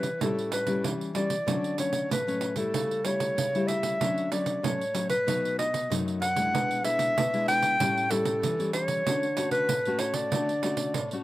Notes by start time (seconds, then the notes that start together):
Already playing: E3 B4
0.03 pandeiro
0.21 A2 G3 C#4 E4 A4, pandeiro
0.39 pandeiro
0.52 B4, pandeiro
0.66 G3 C#4 E4, pandeiro
0.84 E3, pandeiro
1.01 pandeiro
1.14 G3 C#4 E4 D5, pandeiro
1.30 pandeiro
1.47 D3 F#3 A3 C#4, pandeiro
1.64 pandeiro
1.78 F#3 A3 C#4 C#5, pandeiro
1.93 pandeiro
2.11 A2 B4, pandeiro
2.27 F#3 A3 C#4, pandeiro
2.41 pandeiro
2.56 G3 A3 E4 A4, pandeiro
2.74 C#3, pandeiro
2.91 pandeiro
3.04 G3 A3 E4 C#5, pandeiro
3.20 pandeiro
3.38 C#3, pandeiro
3.55 G3 A3 E4, pandeiro
3.68 E5, pandeiro
3.83 pandeiro
4.01 D3 F#3 A3 C#4, pandeiro
4.18 pandeiro
4.31 F#3 A3 C#4 D5, pandeiro
4.46 pandeiro
4.63 A2 F#3 A3 C#4 C#5, pandeiro
4.81 pandeiro
4.94 F#3 A3 C#4, pandeiro
5.10 B4, pandeiro
5.27 B2 F#3 A3 D#4, pandeiro
5.45 pandeiro
5.59 D#5, pandeiro
5.74 pandeiro
5.90 F#2 F#3 A3 D#4, pandeiro
6.08 pandeiro
6.22 F#5, pandeiro
6.36 G#3 D4 E4, pandeiro
6.54 B2, pandeiro
6.71 pandeiro
6.83 G#3 D4 E4 E5, pandeiro
6.99 pandeiro
7.18 B2, pandeiro
7.34 G#3 D4 E4, pandeiro
7.48 G5, pandeiro
7.63 pandeiro
7.80 A2 G3 C#4 E4, pandeiro
7.97 pandeiro
8.11 G3 C#4 E4 A4, pandeiro
8.25 pandeiro
8.43 E3, pandeiro
8.59 G3 C#4 E4, pandeiro
8.73 C#5, pandeiro
8.88 pandeiro
9.06 D3 A3 C#4 F#4, pandeiro
9.23 pandeiro
9.37 A3 C#4 F#4, pandeiro
9.51 B4, pandeiro
9.69 A2, pandeiro
9.85 A3 C#4 F#4, pandeiro
9.99 C#5, pandeiro
10.14 D5, pandeiro
10.32 D3 A3 C#4 F#4, pandeiro
10.49 pandeiro
10.63 A3 C#4 F#4, pandeiro
10.77 pandeiro
10.94 A2, pandeiro
11.11 A3 C#4 F#4, pandeiro